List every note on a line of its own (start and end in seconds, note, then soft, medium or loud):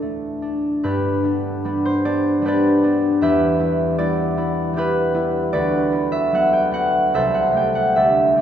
0.00 0.88 D2 soft
0.00 0.87 A2 soft
0.00 0.87 A3 soft
0.00 0.41 D4 soft
0.00 0.87 A4 soft
0.42 0.84 D4 soft
0.83 3.24 G2 medium
0.83 1.23 D4 medium
0.83 2.44 G4 medium
0.83 2.45 B4 medium
1.24 1.64 B3 soft
1.24 1.64 D4 soft
1.65 2.41 G3 soft
1.65 2.04 B3 soft
1.65 2.04 D4 soft
1.85 2.19 C5 medium
2.05 2.43 B3 soft
2.05 2.44 D4 soft
2.05 2.44 D5 medium
2.42 3.97 G3 soft
2.42 2.82 B3 soft
2.42 3.22 G4 medium
2.46 2.83 D4 medium
2.46 3.22 B4 medium
2.46 3.25 D5 medium
2.83 3.58 B3 soft
2.83 3.25 D4 soft
3.21 5.57 E2 medium
3.21 4.76 G4 medium
3.21 4.75 B4 medium
3.21 5.57 E5 medium
3.60 3.98 B3 soft
3.60 3.98 E4 soft
3.98 4.73 G3 soft
3.98 4.36 B3 soft
3.98 4.36 E4 soft
3.98 5.51 D5 medium
4.37 4.75 B3 soft
4.37 4.76 E4 medium
4.73 5.57 G3 medium
4.73 5.13 B3 medium
4.73 5.58 G4 medium
4.78 5.14 E4 medium
4.78 5.53 B4 medium
5.14 5.91 B3 soft
5.14 5.57 E4 medium
5.52 7.17 D2 medium
5.52 5.91 F#4 medium
5.52 7.18 B4 medium
5.52 7.17 D5 medium
5.92 6.32 B3 soft
5.92 6.33 F#4 soft
6.12 6.47 E5 medium
6.32 7.18 F#3 soft
6.32 6.71 B3 soft
6.32 6.71 F#4 soft
6.32 6.68 F#5 medium
6.53 6.88 G5 medium
6.71 7.17 B3 soft
6.71 7.17 F#4 soft
6.71 7.17 F#5 medium
7.14 7.99 C2 medium
7.14 7.96 A4 medium
7.14 7.99 C5 medium
7.14 7.95 E5 medium
7.34 7.69 F#5 medium
7.52 8.35 A3 soft
7.52 7.96 G4 soft
7.57 7.89 G5 medium
7.75 8.10 F#5 medium
7.96 8.41 D2 soft
7.96 8.35 G4 medium
7.96 8.41 A4 medium
7.96 8.41 E5 medium
8.36 8.41 A3 soft
8.36 8.41 G4 soft